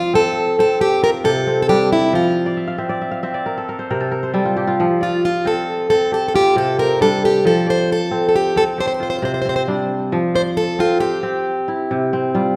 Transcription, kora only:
Already playing: F3 C4 F4 D5
0.14 C4
0.59 C4
0.80 G4
1.03 F4
1.24 C3
1.47 C4
1.69 G3 D4
2.13 F3
2.46 D5
2.57 E5
2.68 F5
2.78 C4 E5
2.89 D5
3.01 E5
3.11 F5
3.23 C4 E5
3.34 D5
3.46 A#4
3.58 A4
3.69 A#4
3.79 C5
3.90 C3 A#4
4.00 A4
4.11 A#4
4.23 C5
4.34 G3 A4
4.45 F4
4.57 G4
4.67 F4
4.80 F3
5.01 D5
5.45 C4
5.90 C4
6.12 G4
6.34 F4
6.56 C3
6.78 C4
7.01 G3 D4
7.45 F3
7.66 D5
8.11 C4
8.56 C4
8.78 G4
9.00 F4
9.22 C3
9.45 C4
9.68 G3 D4
10.12 F3
10.34 D5
10.79 C4
11.01 C5
11.23 C4
11.68 E4
11.91 C3
12.13 C4
12.35 G3 F4

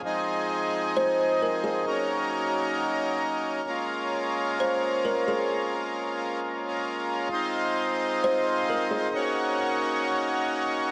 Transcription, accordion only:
Already playing: F3
0.05 G#3 C4 D#4 G#4
1.87 F#3 A#3 C#4 A#4
3.69 G#3 F4
7.33 C4 D#4 C5
9.15 A#3 C#4 F#4 C#5

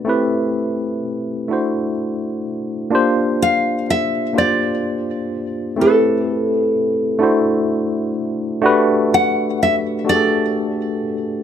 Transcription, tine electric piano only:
0.05 A3 C4 E4 G4
0.09 B4
1.48 A3 D4 E4 F#4
1.53 C5
2.90 A#3 D4 F4 G4
2.95 C5
4.33 A#3 D4 F4 G4
4.38 C5
5.76 A3 C4 E4 G4
5.81 A#4
5.87 B4
7.19 A3 D4 E4 F#4
7.23 C5
8.61 A3 D4 F#4 G4
8.66 B4
10.04 A3 D4 F#4 G4
10.09 G#4
10.16 A4

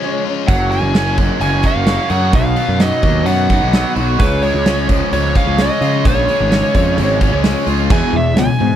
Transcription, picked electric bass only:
0.48 F#1
0.82 F#1
1.18 F#1
1.40 F#1
1.76 F#1
2.10 F#2
2.33 B1
2.68 F#2
3.03 D#2
3.26 F#2
3.62 B1
3.96 B1
4.19 C#2
4.54 C#2
4.89 C#2
5.12 C#2
5.46 C#2
5.81 C#3
6.05 A#1
6.40 G#1
6.75 F2
6.98 G#1
7.32 C#2
7.67 C#2
7.90 E2
8.13 E2
8.37 C#2
8.61 G#2

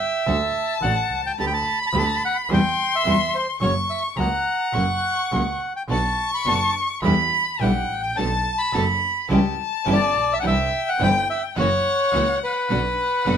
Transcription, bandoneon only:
Already playing: E5
0.82 F#5
1.26 G5
1.40 A5
1.47 G5
1.54 A5
1.82 B5
1.87 A5 B5
1.99 A5
2.25 F#5
2.53 G5
2.96 E5
3.35 C5
3.62 C#5
3.90 E5
4.20 F#5
5.34 F#5
5.76 G5
5.91 A5
6.34 B5
6.49 A5
7.62 F#5
8.03 G5
8.16 A5
8.58 B5
8.73 A5
9.93 D5
10.33 E5
10.40 F#5
10.47 E5
10.89 F#5
11.03 G5
11.30 E5
11.59 C#5
12.44 B4

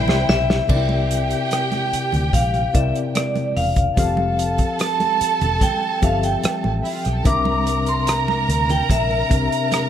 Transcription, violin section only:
Already playing: E4 C5 G5
0.69 G4 G5
3.97 A4 A5
6.84 E4 E5
6.94 F4 F5
7.03 G4 G5
7.15 A4 A5
7.25 A#4 A#5

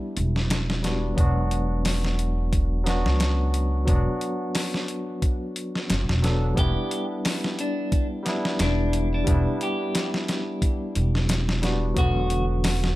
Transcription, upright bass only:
0.17 E1
1.18 E1
3.06 C#2
3.88 E1
5.90 F#1
6.09 E1
6.57 E1
8.60 E1
9.27 E1
10.96 E1
11.97 E1

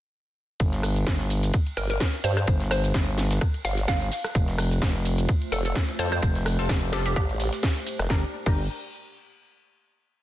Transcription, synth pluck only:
1.77 A#4
1.90 A#4
2.24 C5
2.37 C5
2.71 C5
3.65 F5
3.88 F5
5.52 A4
5.65 A4
5.99 C5
6.12 C5
6.93 G4
7.06 G4
7.16 G4

